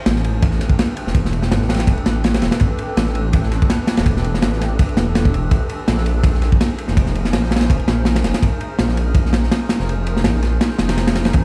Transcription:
Already playing: ambient pad C4 D4 G4 A4 B4
0.06 detuned saw bass A1, snare, ride
0.16 snare
0.24 ride
0.42 kick, ride
0.51 snare
0.60 snare, ride
0.69 kick
0.79 snare, ride
0.97 ride
1.07 detuned saw bass E1, snare
1.15 kick, ride
1.25 snare
1.33 ride
1.42 ambient pad C4 D4 G4 A4 B4, snare
1.51 detuned saw bass A1, snare, ride
1.61 snare
1.69 snare, ride
1.74 snare, ride
1.79 snare, ride
1.87 detuned saw bass E1, kick, ride
1.98 ride
2.06 detuned saw bass A1, snare, ride
2.24 snare, ride
2.34 snare, ride
2.42 detuned saw bass E1, snare, ride
2.51 snare, ride
2.60 detuned saw bass A1, kick, ride
2.78 ride
2.88 ambient pad C4 D4 G4 A4 B4
2.97 detuned saw bass A1, snare, ride
3.06 snare
3.15 ride
3.33 kick, ride
3.43 snare
3.52 snare, ride
3.62 kick
3.70 snare, ride
3.87 snare, ride
3.97 detuned saw bass E1, snare, ride
4.06 kick, ride
4.17 snare
4.24 ride
4.34 snare
4.42 detuned saw bass A1, snare, ride
4.53 snare
4.61 snare, ride
4.79 kick, ride
4.89 ride
4.97 detuned saw bass E1, snare, ride
5.15 snare, ride
5.25 kick
5.34 ride
5.51 detuned saw bass A#1, kick, ride
5.69 ride
5.79 ambient pad C#4 D#4 G#4 A#4 C5
5.88 detuned saw bass A#1, snare, ride
5.98 snare
6.06 ride
6.23 kick, ride
6.34 snare
6.42 snare, ride
6.52 kick
6.61 snare, ride
6.78 ride
6.88 detuned saw bass F1, snare
6.97 kick, ride
7.06 snare
7.15 ride
7.25 ambient pad C#4 D#4 G#4 A#4 C5, snare
7.33 detuned saw bass A#1, snare, ride
7.43 snare
7.51 snare, ride
7.56 snare, ride
7.61 snare, ride
7.70 detuned saw bass F1, kick, ride
7.79 ride
7.88 detuned saw bass A#1, snare, ride
8.05 snare, ride
8.15 snare, ride
8.24 detuned saw bass F1, snare, ride
8.34 snare, ride
8.43 detuned saw bass A#1, kick, ride
8.61 ride
8.70 ambient pad C#4 D#4 G#4 A#4 C5
8.79 detuned saw bass A#1, snare, ride
8.89 snare
8.97 ride
9.15 kick, ride
9.26 snare
9.33 snare, ride
9.43 snare
9.51 snare, ride
9.69 snare, ride
9.79 detuned saw bass F1, snare
9.89 ride
10.07 ride
10.15 ambient pad C#4 D#4 G#4 A#4 C5, snare
10.24 detuned saw bass A#1, snare, ride
10.34 snare
10.43 snare, ride
10.61 snare, ride
10.70 snare
10.79 detuned saw bass F1, snare, ride
10.89 snare, ride
10.97 snare, ride
11.07 snare, ride
11.15 snare, ride
11.25 snare, ride
11.33 detuned saw bass A1, kick, ride

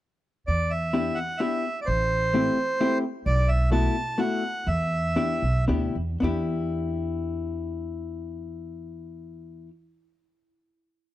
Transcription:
0.47 upright bass E2, accordion D5
0.71 accordion E5
0.93 hollow-body jazz guitar B3 D4 E4 G4
1.15 accordion F#5
1.38 hollow-body jazz guitar B3 D4 E4 G4, accordion E5
1.81 accordion D5
1.86 upright bass A1, accordion C5
2.34 hollow-body jazz guitar A3 C4 E4 G4
2.80 hollow-body jazz guitar A3 C4 E4 G4
3.26 upright bass B1, accordion D5
3.48 accordion E5
3.72 hollow-body jazz guitar A3 B3 E4 F#4, accordion A5
4.18 hollow-body jazz guitar A3 B3 E4 F#4, accordion F#5
4.67 upright bass E2, accordion E5
5.16 hollow-body jazz guitar B3 D4 E4 G4
5.42 upright bass B1
5.68 upright bass D2, hollow-body jazz guitar B3 D4 E4 G4
5.95 upright bass E2
6.20 upright bass E2, hollow-body jazz guitar B3 D4 E4 G4

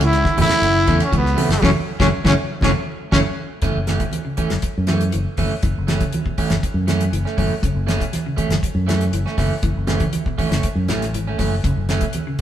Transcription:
0.00 fingered electric bass C#2, clean electric guitar C#3, trombone E4, snare, ride bell
0.05 trumpet E4
0.13 snare, ride bell
0.24 clean electric guitar D3, kick, snare, high conga
0.37 fingered electric bass F#1, clean electric guitar E3 A3 C#4, trombone E4, open hi-hat, high conga, low conga
0.41 trumpet E4
0.49 clean electric guitar E3 A3 C#4, muted fingered electric bass stroke, snare, ride bell
0.62 fingered electric bass F#1, ride bell
0.87 fingered electric bass E2, clean electric guitar C#3 E3 A3 C#4, kick, snare, ride bell
1.00 trumpet C#4, snare, ride bell
1.04 trombone C#4
1.12 fingered electric bass C#2, clean electric guitar E3, kick, ride bell, high conga
1.17 trumpet B3, trombone B3
1.26 snare
1.36 clean electric guitar C#3 E3 A3 C#4, open hi-hat, high conga
1.49 fingered electric bass F#1, trumpet A3, trombone A3, snare, ride bell
1.62 fingered electric bass F#1, clean electric guitar C#3 E3 F#3 A3 C#4, trombone C#4, trumpet C#4, kick, snare, high conga
1.99 fingered electric bass F#1, clean electric guitar C#3 E3 F#3 A3 C#4, trumpet C#4, trombone C#4, kick, snare, high conga
2.24 fingered electric bass F#1, clean electric guitar C#3 E3 F#3 A3 C#4, trumpet C#4, kick, snare, high conga
2.29 trombone C#4
2.61 fingered electric bass F#1, clean electric guitar C#3 E3 F#3 A3 C#4, trumpet C#4, trombone C#4, kick, snare, high conga
3.12 fingered electric bass F#1, clean electric guitar C#3 E3 F#3 A3 C#4, trumpet C#4, trombone C#4, kick, snare, high conga
3.62 fingered electric bass F#1, clean electric guitar C#3 E3 A3 C#4, kick, snare, closed hi-hat
3.76 fingered electric bass F#1
3.87 clean electric guitar E3 A3 C#4, snare, closed hi-hat, high conga
3.99 clean electric guitar B2, kick, closed hi-hat, high conga
4.11 closed hi-hat, high conga
4.25 clean electric guitar C#3
4.37 clean electric guitar E3 A3 C#4, kick, closed hi-hat, high conga
4.50 fingered electric bass F#1, clean electric guitar F#3, snare, closed hi-hat
4.62 kick, closed hi-hat
4.78 fingered electric bass F#2
4.87 clean electric guitar E3 A3 C#4, snare, closed hi-hat, high conga
5.01 closed hi-hat
5.12 fingered electric bass F#1, clean electric guitar E3, closed hi-hat
5.37 fingered electric bass F#1, clean electric guitar C#3 E3 A3 C#4, kick, open hi-hat, high conga
5.63 fingered electric bass F#1, clean electric guitar E3, kick, closed hi-hat
5.78 fingered electric bass F#1
5.87 clean electric guitar E3 A3 C#4, snare, closed hi-hat, high conga
6.00 clean electric guitar C#3, kick, closed hi-hat
6.13 closed hi-hat, high conga
6.26 clean electric guitar B2, kick
6.38 clean electric guitar E3 A3 C#4, kick, open hi-hat, high conga
6.50 fingered electric bass F#1, clean electric guitar C#3, snare, closed hi-hat, high conga
6.63 muted fingered electric bass stroke, kick, closed hi-hat
6.74 fingered electric bass F#2
6.87 clean electric guitar E3 F#3 A3 C#4, snare, closed hi-hat, high conga
7.01 closed hi-hat
7.12 fingered electric bass F#1, clean electric guitar E3, closed hi-hat
7.25 clean electric guitar A3 C#4, snare
7.37 fingered electric bass F#1, clean electric guitar E3 F#3 A3 C#4, kick, open hi-hat, high conga
7.62 fingered electric bass F#1, clean electric guitar C#3, kick, closed hi-hat
7.75 fingered electric bass F#1
7.87 clean electric guitar E3 A3 C#4, snare, closed hi-hat, high conga
8.00 clean electric guitar B2, kick, closed hi-hat
8.13 snare, closed hi-hat, high conga
8.26 clean electric guitar C#3
8.37 clean electric guitar A3 C#4, muted clean electric guitar stroke, kick, closed hi-hat, high conga
8.49 fingered electric bass F#1, clean electric guitar F#3, snare, closed hi-hat, high conga
8.63 kick, closed hi-hat
8.75 fingered electric bass F#2
8.87 clean electric guitar E3 A3 C#4, snare, closed hi-hat, high conga
9.01 closed hi-hat
9.12 fingered electric bass F#1, clean electric guitar E3, closed hi-hat
9.26 clean electric guitar A3 C#4, snare
9.37 fingered electric bass F#1, clean electric guitar C#3 E3 A3 C#4, kick, snare, open hi-hat, high conga
9.62 fingered electric bass F#1, clean electric guitar E3, kick, closed hi-hat
9.77 fingered electric bass F#1
9.87 clean electric guitar E3 A3 C#4, snare, closed hi-hat, high conga
10.00 clean electric guitar C#3, kick, closed hi-hat, high conga
10.13 closed hi-hat, high conga
10.26 clean electric guitar B2, kick
10.38 clean electric guitar E3 A3 C#4, kick, open hi-hat, high conga
10.50 fingered electric bass F#1, clean electric guitar C#3 A3 C#4, snare, closed hi-hat
10.63 kick, closed hi-hat
10.75 fingered electric bass F#2
10.88 fingered electric bass A1, clean electric guitar E3 F#3 A3 C#4, snare, closed hi-hat, high conga
11.02 snare, closed hi-hat
11.13 fingered electric bass G#1, clean electric guitar E3, closed hi-hat
11.27 clean electric guitar A3 C#4
11.38 fingered electric bass F#1, clean electric guitar E3 F#3 A3 C#4, kick, snare, open hi-hat
11.63 fingered electric bass F#1, clean electric guitar C#3, kick, closed hi-hat
11.76 fingered electric bass F#1
11.89 clean electric guitar E3 A3 C#4, snare, closed hi-hat, high conga
12.01 clean electric guitar B2, kick, closed hi-hat
12.13 closed hi-hat, high conga
12.27 clean electric guitar C#3

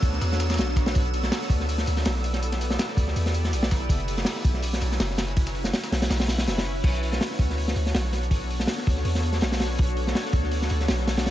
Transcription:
Already playing: synth texture E6
0.02 808-style bass D2, kick, open hi-hat, tambourine
0.13 snare
0.21 808-style bass E2, snare, open hi-hat, tambourine
0.32 snare
0.40 snare, open hi-hat, tambourine
0.50 snare, tambourine
0.54 snare, open hi-hat, tambourine
0.58 808-style bass B1, snare, tambourine
0.68 snare
0.76 kick, snare, open hi-hat, tambourine
0.86 snare, open hi-hat
0.95 808-style bass B1, kick, open hi-hat, tambourine
1.05 closed hi-hat
1.14 open hi-hat, tambourine
1.23 snare
1.32 snare, open hi-hat, tambourine
1.42 snare
1.50 808-style bass D2, kick, open hi-hat, tambourine
1.60 snare
1.69 open hi-hat, tambourine
1.78 snare
1.86 808-style bass D2, snare, open hi-hat, tambourine
1.97 snare
2.05 808-style bass B1, snare, open hi-hat, tambourine
2.15 snare
2.24 open hi-hat, tambourine
2.33 snare, closed hi-hat
2.42 open hi-hat, tambourine
2.52 snare, closed hi-hat
2.61 open hi-hat, tambourine
2.70 snare
2.79 snare, open hi-hat, tambourine
2.89 snare
2.97 808-style bass D2, kick, open hi-hat, tambourine
3.07 snare
3.16 808-style bass E2, open hi-hat, tambourine
3.26 snare
3.34 open hi-hat, tambourine
3.44 snare
3.53 808-style bass B1, open hi-hat, tambourine
3.63 snare
3.71 kick, snare, open hi-hat, tambourine
3.82 closed hi-hat
3.89 808-style bass F#1, kick, open hi-hat, tambourine
4.00 closed hi-hat
4.08 open hi-hat, tambourine
4.18 snare
4.25 snare, open hi-hat
4.26 snare, tambourine
4.36 snare
4.44 808-style bass B1, kick, open hi-hat, tambourine
4.54 snare
4.62 open hi-hat, tambourine
4.73 snare
4.81 808-style bass B1, snare, open hi-hat, tambourine
4.92 snare
5.00 808-style bass F#1, snare, open hi-hat, tambourine
5.10 snare
5.18 snare, open hi-hat, tambourine
5.28 snare, closed hi-hat
5.37 kick, open hi-hat, tambourine
5.47 snare, tambourine
5.55 snare, open hi-hat
5.64 snare, tambourine
5.73 snare, open hi-hat, tambourine
5.83 snare, tambourine
5.92 808-style bass B1, snare, open hi-hat
6.02 snare, open hi-hat, tambourine
6.10 808-style bass B1, snare, open hi-hat, tambourine
6.20 snare, open hi-hat
6.28 snare, open hi-hat, tambourine
6.38 snare, open hi-hat
6.47 808-style bass F#1, snare, open hi-hat, tambourine
6.58 snare
6.84 808-style bass B1, kick, open hi-hat, crash
6.95 closed hi-hat
7.03 open hi-hat
7.13 snare
7.21 snare, open hi-hat
7.31 snare
7.39 808-style bass D2, kick, open hi-hat
7.50 snare
7.58 open hi-hat
7.68 snare
7.76 808-style bass D2, open hi-hat
7.86 snare
7.94 808-style bass B1, snare, open hi-hat
8.04 snare
8.12 snare, open hi-hat
8.23 closed hi-hat
8.31 kick, open hi-hat
8.50 open hi-hat
8.60 snare
8.67 snare, open hi-hat
8.78 snare
8.87 808-style bass D2, kick, open hi-hat
8.96 snare
9.05 808-style bass E2, open hi-hat
9.15 snare
9.23 open hi-hat
9.32 snare
9.41 808-style bass B1, snare, open hi-hat
9.52 snare, open hi-hat
9.60 snare, open hi-hat
9.79 808-style bass B1, kick, open hi-hat
9.89 closed hi-hat
9.97 open hi-hat
10.07 snare
10.15 snare, open hi-hat
10.25 snare
10.33 808-style bass D2, kick, open hi-hat
10.43 snare
10.52 open hi-hat
10.62 snare
10.70 808-style bass D2, open hi-hat
10.80 snare
10.88 808-style bass B1, snare, open hi-hat
10.98 snare
11.07 snare, open hi-hat
11.17 snare, open hi-hat
11.26 snare, open hi-hat

